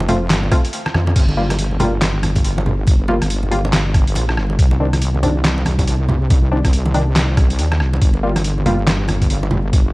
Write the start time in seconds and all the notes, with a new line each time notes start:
Already playing: F1
0.00 muted conga
0.08 A3 C4 F4, closed hi-hat, low conga
0.30 G1, snare, clap, closed hi-hat, muted conga
0.43 high conga
0.52 A3 C4 F4, kick, cross-stick, closed hi-hat, muted conga
0.65 closed hi-hat
0.73 closed hi-hat
0.86 cross-stick, muted conga
0.94 F2, cross-stick, high conga
1.07 muted conga
1.16 G1, kick, closed hi-hat, crash
1.29 muted conga
1.37 G3 A#3 F4
1.50 cross-stick, closed hi-hat, muted conga, high conga
1.59 closed hi-hat
1.71 high conga
1.80 G3 A#3 F4, closed hi-hat, muted conga, low conga
2.02 snare, clap, closed hi-hat, muted conga
2.23 cross-stick, closed hi-hat, high conga
2.36 kick, closed hi-hat, muted conga
2.44 closed hi-hat
2.58 muted conga
2.66 low conga
2.87 kick, closed hi-hat, muted conga
3.08 G3 A#3 F4, muted conga
3.21 G1, cross-stick, closed hi-hat, high conga
3.30 closed hi-hat
3.43 muted conga, high conga
3.51 G3 A#3 F4, closed hi-hat
3.65 muted conga
3.73 snare, clap, closed hi-hat
3.94 kick, cross-stick, closed hi-hat, muted conga
4.07 closed hi-hat
4.15 A#1, closed hi-hat, muted conga
4.29 cross-stick
4.37 G1, cross-stick
4.50 muted conga
4.59 C2, kick, closed hi-hat
4.71 muted conga
4.80 D#3 C4 D4
4.93 cross-stick, closed hi-hat, high conga
5.02 closed hi-hat, muted conga
5.14 high conga
5.23 D#3 C4 D4, closed hi-hat, muted conga, low conga
5.45 snare, clap, closed hi-hat
5.58 muted conga
5.66 cross-stick, closed hi-hat, high conga
5.79 kick, closed hi-hat, muted conga
5.88 closed hi-hat
6.08 muted conga, low conga
6.30 kick, closed hi-hat, muted conga
6.51 D#3 C4 D4
6.65 C2, kick, cross-stick, closed hi-hat, muted conga, high conga
6.73 closed hi-hat
6.86 muted conga, high conga
6.94 D#3 C4 D4, closed hi-hat
7.16 snare, clap, closed hi-hat, muted conga
7.37 kick, cross-stick, closed hi-hat, muted conga
7.50 closed hi-hat
7.59 D#2, closed hi-hat
7.72 cross-stick, muted conga
7.80 C2, cross-stick
7.93 muted conga
8.02 G1, kick, closed hi-hat
8.13 muted conga
8.23 G3 A#3 F4
8.36 cross-stick, closed hi-hat, muted conga, high conga
8.44 closed hi-hat
8.58 high conga
8.66 G3 A#3 F4, closed hi-hat, muted conga, low conga
8.87 snare, clap, closed hi-hat, muted conga
9.08 cross-stick, closed hi-hat, high conga
9.22 kick, closed hi-hat, muted conga
9.30 closed hi-hat
9.43 muted conga
9.51 low conga
9.73 kick, closed hi-hat, muted conga